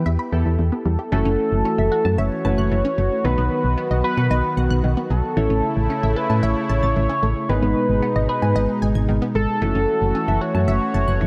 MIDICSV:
0, 0, Header, 1, 6, 480
1, 0, Start_track
1, 0, Tempo, 530973
1, 1013, Time_signature, 4, 2, 24, 8
1, 10187, End_track
2, 0, Start_track
2, 0, Title_t, "Analog synth lead"
2, 0, Program_c, 0, 81
2, 0, Note_on_c, 0, 71, 100
2, 498, Note_off_c, 0, 71, 0
2, 774, Note_on_c, 0, 69, 103
2, 1974, Note_on_c, 0, 73, 120
2, 1987, Note_off_c, 0, 69, 0
2, 2934, Note_on_c, 0, 71, 112
2, 2947, Note_off_c, 0, 73, 0
2, 3648, Note_off_c, 0, 71, 0
2, 3653, Note_on_c, 0, 71, 98
2, 4337, Note_off_c, 0, 71, 0
2, 4614, Note_on_c, 0, 69, 107
2, 5572, Note_on_c, 0, 71, 104
2, 5585, Note_off_c, 0, 69, 0
2, 5811, Note_on_c, 0, 73, 125
2, 5825, Note_off_c, 0, 71, 0
2, 6771, Note_on_c, 0, 71, 114
2, 6785, Note_off_c, 0, 73, 0
2, 7487, Note_off_c, 0, 71, 0
2, 7493, Note_on_c, 0, 71, 93
2, 8177, Note_off_c, 0, 71, 0
2, 8453, Note_on_c, 0, 69, 107
2, 9412, Note_on_c, 0, 73, 127
2, 9425, Note_off_c, 0, 69, 0
2, 10187, Note_off_c, 0, 73, 0
2, 10187, End_track
3, 0, Start_track
3, 0, Title_t, "Synth arpeggio sound"
3, 0, Program_c, 1, 84
3, 53, Note_on_c, 1, 76, 100
3, 126, Note_off_c, 1, 76, 0
3, 173, Note_on_c, 1, 83, 82
3, 246, Note_off_c, 1, 83, 0
3, 653, Note_on_c, 1, 59, 79
3, 726, Note_off_c, 1, 59, 0
3, 773, Note_on_c, 1, 55, 79
3, 846, Note_off_c, 1, 55, 0
3, 893, Note_on_c, 1, 67, 77
3, 966, Note_off_c, 1, 67, 0
3, 1013, Note_on_c, 1, 52, 97
3, 1086, Note_off_c, 1, 52, 0
3, 1133, Note_on_c, 1, 61, 84
3, 1206, Note_off_c, 1, 61, 0
3, 1493, Note_on_c, 1, 61, 88
3, 1566, Note_off_c, 1, 61, 0
3, 1613, Note_on_c, 1, 76, 80
3, 1686, Note_off_c, 1, 76, 0
3, 1733, Note_on_c, 1, 66, 85
3, 1806, Note_off_c, 1, 66, 0
3, 1853, Note_on_c, 1, 81, 84
3, 1926, Note_off_c, 1, 81, 0
3, 1974, Note_on_c, 1, 76, 100
3, 2046, Note_off_c, 1, 76, 0
3, 2213, Note_on_c, 1, 81, 94
3, 2286, Note_off_c, 1, 81, 0
3, 2333, Note_on_c, 1, 90, 90
3, 2406, Note_off_c, 1, 90, 0
3, 2454, Note_on_c, 1, 52, 85
3, 2527, Note_off_c, 1, 52, 0
3, 2575, Note_on_c, 1, 61, 83
3, 2647, Note_off_c, 1, 61, 0
3, 2694, Note_on_c, 1, 57, 80
3, 2766, Note_off_c, 1, 57, 0
3, 2935, Note_on_c, 1, 51, 95
3, 3007, Note_off_c, 1, 51, 0
3, 3054, Note_on_c, 1, 59, 80
3, 3126, Note_off_c, 1, 59, 0
3, 3414, Note_on_c, 1, 59, 91
3, 3486, Note_off_c, 1, 59, 0
3, 3534, Note_on_c, 1, 75, 81
3, 3606, Note_off_c, 1, 75, 0
3, 3654, Note_on_c, 1, 66, 83
3, 3727, Note_off_c, 1, 66, 0
3, 3774, Note_on_c, 1, 78, 88
3, 3846, Note_off_c, 1, 78, 0
3, 3894, Note_on_c, 1, 75, 102
3, 3967, Note_off_c, 1, 75, 0
3, 4134, Note_on_c, 1, 78, 95
3, 4206, Note_off_c, 1, 78, 0
3, 4253, Note_on_c, 1, 90, 91
3, 4326, Note_off_c, 1, 90, 0
3, 4374, Note_on_c, 1, 51, 85
3, 4447, Note_off_c, 1, 51, 0
3, 4494, Note_on_c, 1, 59, 79
3, 4566, Note_off_c, 1, 59, 0
3, 4614, Note_on_c, 1, 54, 83
3, 4687, Note_off_c, 1, 54, 0
3, 4854, Note_on_c, 1, 52, 93
3, 4926, Note_off_c, 1, 52, 0
3, 4974, Note_on_c, 1, 61, 81
3, 5046, Note_off_c, 1, 61, 0
3, 5333, Note_on_c, 1, 61, 89
3, 5406, Note_off_c, 1, 61, 0
3, 5453, Note_on_c, 1, 76, 84
3, 5526, Note_off_c, 1, 76, 0
3, 5572, Note_on_c, 1, 69, 85
3, 5645, Note_off_c, 1, 69, 0
3, 5692, Note_on_c, 1, 81, 87
3, 5765, Note_off_c, 1, 81, 0
3, 5812, Note_on_c, 1, 76, 104
3, 5885, Note_off_c, 1, 76, 0
3, 6052, Note_on_c, 1, 81, 94
3, 6125, Note_off_c, 1, 81, 0
3, 6173, Note_on_c, 1, 93, 89
3, 6246, Note_off_c, 1, 93, 0
3, 6293, Note_on_c, 1, 52, 85
3, 6366, Note_off_c, 1, 52, 0
3, 6414, Note_on_c, 1, 61, 81
3, 6486, Note_off_c, 1, 61, 0
3, 6534, Note_on_c, 1, 57, 81
3, 6606, Note_off_c, 1, 57, 0
3, 6774, Note_on_c, 1, 51, 96
3, 6847, Note_off_c, 1, 51, 0
3, 6893, Note_on_c, 1, 59, 80
3, 6966, Note_off_c, 1, 59, 0
3, 7254, Note_on_c, 1, 59, 92
3, 7327, Note_off_c, 1, 59, 0
3, 7374, Note_on_c, 1, 75, 83
3, 7447, Note_off_c, 1, 75, 0
3, 7494, Note_on_c, 1, 68, 83
3, 7567, Note_off_c, 1, 68, 0
3, 7614, Note_on_c, 1, 80, 88
3, 7687, Note_off_c, 1, 80, 0
3, 7735, Note_on_c, 1, 75, 102
3, 7807, Note_off_c, 1, 75, 0
3, 7974, Note_on_c, 1, 80, 94
3, 8047, Note_off_c, 1, 80, 0
3, 8094, Note_on_c, 1, 92, 90
3, 8166, Note_off_c, 1, 92, 0
3, 8214, Note_on_c, 1, 51, 85
3, 8287, Note_off_c, 1, 51, 0
3, 8334, Note_on_c, 1, 59, 81
3, 8407, Note_off_c, 1, 59, 0
3, 8453, Note_on_c, 1, 56, 80
3, 8526, Note_off_c, 1, 56, 0
3, 8694, Note_on_c, 1, 52, 95
3, 8767, Note_off_c, 1, 52, 0
3, 8815, Note_on_c, 1, 61, 80
3, 8887, Note_off_c, 1, 61, 0
3, 9175, Note_on_c, 1, 61, 89
3, 9247, Note_off_c, 1, 61, 0
3, 9295, Note_on_c, 1, 76, 83
3, 9367, Note_off_c, 1, 76, 0
3, 9415, Note_on_c, 1, 66, 84
3, 9487, Note_off_c, 1, 66, 0
3, 9534, Note_on_c, 1, 81, 87
3, 9607, Note_off_c, 1, 81, 0
3, 9654, Note_on_c, 1, 76, 101
3, 9726, Note_off_c, 1, 76, 0
3, 9893, Note_on_c, 1, 81, 89
3, 9966, Note_off_c, 1, 81, 0
3, 10014, Note_on_c, 1, 90, 91
3, 10087, Note_off_c, 1, 90, 0
3, 10134, Note_on_c, 1, 52, 81
3, 10187, Note_off_c, 1, 52, 0
3, 10187, End_track
4, 0, Start_track
4, 0, Title_t, "Synth keys"
4, 0, Program_c, 2, 88
4, 0, Note_on_c, 2, 59, 65
4, 0, Note_on_c, 2, 64, 60
4, 0, Note_on_c, 2, 67, 59
4, 0, Note_on_c, 2, 71, 70
4, 270, Note_off_c, 2, 59, 0
4, 270, Note_off_c, 2, 64, 0
4, 270, Note_off_c, 2, 67, 0
4, 270, Note_off_c, 2, 71, 0
4, 294, Note_on_c, 2, 59, 57
4, 294, Note_on_c, 2, 64, 52
4, 294, Note_on_c, 2, 67, 53
4, 294, Note_on_c, 2, 69, 62
4, 1003, Note_off_c, 2, 64, 0
4, 1004, Note_off_c, 2, 69, 0
4, 1014, Note_off_c, 2, 59, 0
4, 1014, Note_off_c, 2, 67, 0
4, 1014, Note_on_c, 2, 61, 62
4, 1014, Note_on_c, 2, 64, 62
4, 1014, Note_on_c, 2, 66, 64
4, 1014, Note_on_c, 2, 69, 74
4, 1015, Note_on_c, 2, 57, 69
4, 2190, Note_off_c, 2, 57, 0
4, 2190, Note_off_c, 2, 61, 0
4, 2190, Note_off_c, 2, 64, 0
4, 2190, Note_off_c, 2, 66, 0
4, 2190, Note_off_c, 2, 69, 0
4, 2213, Note_on_c, 2, 61, 45
4, 2213, Note_on_c, 2, 71, 57
4, 2214, Note_on_c, 2, 57, 52
4, 2214, Note_on_c, 2, 64, 47
4, 2214, Note_on_c, 2, 66, 47
4, 2923, Note_off_c, 2, 66, 0
4, 2923, Note_off_c, 2, 71, 0
4, 2933, Note_off_c, 2, 61, 0
4, 2934, Note_off_c, 2, 57, 0
4, 2934, Note_off_c, 2, 64, 0
4, 2934, Note_on_c, 2, 54, 68
4, 2934, Note_on_c, 2, 59, 61
4, 2934, Note_on_c, 2, 63, 63
4, 2934, Note_on_c, 2, 66, 62
4, 2934, Note_on_c, 2, 71, 74
4, 4818, Note_off_c, 2, 54, 0
4, 4818, Note_off_c, 2, 59, 0
4, 4818, Note_off_c, 2, 63, 0
4, 4818, Note_off_c, 2, 66, 0
4, 4818, Note_off_c, 2, 71, 0
4, 4854, Note_on_c, 2, 57, 69
4, 4854, Note_on_c, 2, 61, 65
4, 4854, Note_on_c, 2, 64, 63
4, 4854, Note_on_c, 2, 69, 62
4, 4854, Note_on_c, 2, 73, 74
4, 6738, Note_off_c, 2, 57, 0
4, 6738, Note_off_c, 2, 61, 0
4, 6738, Note_off_c, 2, 64, 0
4, 6738, Note_off_c, 2, 69, 0
4, 6738, Note_off_c, 2, 73, 0
4, 6774, Note_on_c, 2, 56, 69
4, 6774, Note_on_c, 2, 59, 60
4, 6774, Note_on_c, 2, 63, 61
4, 6774, Note_on_c, 2, 68, 62
4, 6774, Note_on_c, 2, 71, 74
4, 8658, Note_off_c, 2, 56, 0
4, 8658, Note_off_c, 2, 59, 0
4, 8658, Note_off_c, 2, 63, 0
4, 8658, Note_off_c, 2, 68, 0
4, 8658, Note_off_c, 2, 71, 0
4, 8694, Note_on_c, 2, 57, 69
4, 8694, Note_on_c, 2, 61, 63
4, 8694, Note_on_c, 2, 64, 62
4, 8694, Note_on_c, 2, 66, 63
4, 8695, Note_on_c, 2, 69, 74
4, 10187, Note_off_c, 2, 57, 0
4, 10187, Note_off_c, 2, 61, 0
4, 10187, Note_off_c, 2, 64, 0
4, 10187, Note_off_c, 2, 66, 0
4, 10187, Note_off_c, 2, 69, 0
4, 10187, End_track
5, 0, Start_track
5, 0, Title_t, "Analog synth pad"
5, 0, Program_c, 3, 89
5, 1013, Note_on_c, 3, 57, 78
5, 1014, Note_on_c, 3, 52, 82
5, 1014, Note_on_c, 3, 66, 92
5, 2914, Note_off_c, 3, 52, 0
5, 2914, Note_off_c, 3, 57, 0
5, 2934, Note_on_c, 3, 51, 82
5, 2934, Note_on_c, 3, 59, 76
5, 4818, Note_off_c, 3, 66, 0
5, 4835, Note_off_c, 3, 51, 0
5, 4835, Note_off_c, 3, 59, 0
5, 4855, Note_on_c, 3, 49, 81
5, 4855, Note_on_c, 3, 57, 74
5, 4855, Note_on_c, 3, 64, 93
5, 6755, Note_off_c, 3, 49, 0
5, 6755, Note_off_c, 3, 57, 0
5, 6755, Note_off_c, 3, 64, 0
5, 6774, Note_on_c, 3, 47, 81
5, 6774, Note_on_c, 3, 56, 76
5, 6774, Note_on_c, 3, 63, 92
5, 8675, Note_off_c, 3, 47, 0
5, 8675, Note_off_c, 3, 56, 0
5, 8675, Note_off_c, 3, 63, 0
5, 8695, Note_on_c, 3, 57, 77
5, 8695, Note_on_c, 3, 66, 91
5, 8696, Note_on_c, 3, 52, 85
5, 10187, Note_off_c, 3, 52, 0
5, 10187, Note_off_c, 3, 57, 0
5, 10187, Note_off_c, 3, 66, 0
5, 10187, End_track
6, 0, Start_track
6, 0, Title_t, "FM bass"
6, 0, Program_c, 4, 39
6, 54, Note_on_c, 4, 40, 102
6, 159, Note_off_c, 4, 40, 0
6, 294, Note_on_c, 4, 40, 99
6, 399, Note_off_c, 4, 40, 0
6, 414, Note_on_c, 4, 40, 92
6, 519, Note_off_c, 4, 40, 0
6, 534, Note_on_c, 4, 40, 105
6, 639, Note_off_c, 4, 40, 0
6, 774, Note_on_c, 4, 40, 103
6, 879, Note_off_c, 4, 40, 0
6, 1014, Note_on_c, 4, 30, 111
6, 1119, Note_off_c, 4, 30, 0
6, 1134, Note_on_c, 4, 30, 97
6, 1239, Note_off_c, 4, 30, 0
6, 1374, Note_on_c, 4, 30, 94
6, 1479, Note_off_c, 4, 30, 0
6, 1614, Note_on_c, 4, 30, 102
6, 1719, Note_off_c, 4, 30, 0
6, 1854, Note_on_c, 4, 42, 107
6, 1959, Note_off_c, 4, 42, 0
6, 1974, Note_on_c, 4, 30, 113
6, 2079, Note_off_c, 4, 30, 0
6, 2214, Note_on_c, 4, 30, 105
6, 2319, Note_off_c, 4, 30, 0
6, 2334, Note_on_c, 4, 30, 108
6, 2439, Note_off_c, 4, 30, 0
6, 2454, Note_on_c, 4, 30, 105
6, 2559, Note_off_c, 4, 30, 0
6, 2694, Note_on_c, 4, 30, 106
6, 2799, Note_off_c, 4, 30, 0
6, 2933, Note_on_c, 4, 35, 113
6, 3039, Note_off_c, 4, 35, 0
6, 3053, Note_on_c, 4, 35, 98
6, 3159, Note_off_c, 4, 35, 0
6, 3294, Note_on_c, 4, 35, 101
6, 3399, Note_off_c, 4, 35, 0
6, 3533, Note_on_c, 4, 35, 95
6, 3639, Note_off_c, 4, 35, 0
6, 3774, Note_on_c, 4, 47, 96
6, 3879, Note_off_c, 4, 47, 0
6, 3893, Note_on_c, 4, 35, 104
6, 3999, Note_off_c, 4, 35, 0
6, 4133, Note_on_c, 4, 35, 95
6, 4239, Note_off_c, 4, 35, 0
6, 4253, Note_on_c, 4, 35, 100
6, 4359, Note_off_c, 4, 35, 0
6, 4373, Note_on_c, 4, 35, 112
6, 4479, Note_off_c, 4, 35, 0
6, 4613, Note_on_c, 4, 35, 103
6, 4719, Note_off_c, 4, 35, 0
6, 4853, Note_on_c, 4, 33, 115
6, 4959, Note_off_c, 4, 33, 0
6, 4973, Note_on_c, 4, 33, 102
6, 5079, Note_off_c, 4, 33, 0
6, 5213, Note_on_c, 4, 33, 102
6, 5319, Note_off_c, 4, 33, 0
6, 5454, Note_on_c, 4, 33, 106
6, 5559, Note_off_c, 4, 33, 0
6, 5693, Note_on_c, 4, 45, 96
6, 5799, Note_off_c, 4, 45, 0
6, 5814, Note_on_c, 4, 33, 106
6, 5919, Note_off_c, 4, 33, 0
6, 6054, Note_on_c, 4, 33, 101
6, 6159, Note_off_c, 4, 33, 0
6, 6174, Note_on_c, 4, 33, 104
6, 6279, Note_off_c, 4, 33, 0
6, 6295, Note_on_c, 4, 33, 106
6, 6400, Note_off_c, 4, 33, 0
6, 6534, Note_on_c, 4, 33, 103
6, 6639, Note_off_c, 4, 33, 0
6, 6774, Note_on_c, 4, 32, 114
6, 6879, Note_off_c, 4, 32, 0
6, 6894, Note_on_c, 4, 32, 95
6, 6999, Note_off_c, 4, 32, 0
6, 7134, Note_on_c, 4, 32, 95
6, 7240, Note_off_c, 4, 32, 0
6, 7375, Note_on_c, 4, 32, 102
6, 7480, Note_off_c, 4, 32, 0
6, 7615, Note_on_c, 4, 44, 107
6, 7720, Note_off_c, 4, 44, 0
6, 7735, Note_on_c, 4, 32, 106
6, 7840, Note_off_c, 4, 32, 0
6, 7975, Note_on_c, 4, 32, 95
6, 8080, Note_off_c, 4, 32, 0
6, 8095, Note_on_c, 4, 32, 110
6, 8200, Note_off_c, 4, 32, 0
6, 8215, Note_on_c, 4, 32, 101
6, 8320, Note_off_c, 4, 32, 0
6, 8454, Note_on_c, 4, 32, 102
6, 8560, Note_off_c, 4, 32, 0
6, 8694, Note_on_c, 4, 30, 107
6, 8799, Note_off_c, 4, 30, 0
6, 8815, Note_on_c, 4, 30, 96
6, 8920, Note_off_c, 4, 30, 0
6, 9054, Note_on_c, 4, 30, 97
6, 9160, Note_off_c, 4, 30, 0
6, 9294, Note_on_c, 4, 30, 100
6, 9399, Note_off_c, 4, 30, 0
6, 9534, Note_on_c, 4, 42, 102
6, 9640, Note_off_c, 4, 42, 0
6, 9654, Note_on_c, 4, 30, 114
6, 9759, Note_off_c, 4, 30, 0
6, 9894, Note_on_c, 4, 30, 105
6, 9999, Note_off_c, 4, 30, 0
6, 10014, Note_on_c, 4, 30, 108
6, 10119, Note_off_c, 4, 30, 0
6, 10134, Note_on_c, 4, 30, 107
6, 10187, Note_off_c, 4, 30, 0
6, 10187, End_track
0, 0, End_of_file